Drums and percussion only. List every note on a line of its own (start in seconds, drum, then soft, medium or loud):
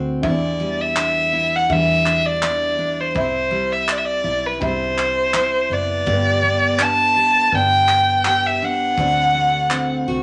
0.23 kick loud
0.96 clap loud
1.70 kick medium
2.06 clap medium
2.43 clap loud
3.16 kick loud
3.88 clap loud
4.62 kick medium
4.98 clap medium
5.34 clap loud
6.07 kick loud
6.79 clap loud
7.52 kick medium
7.88 clap medium
8.25 clap loud
8.98 kick loud
9.71 clap loud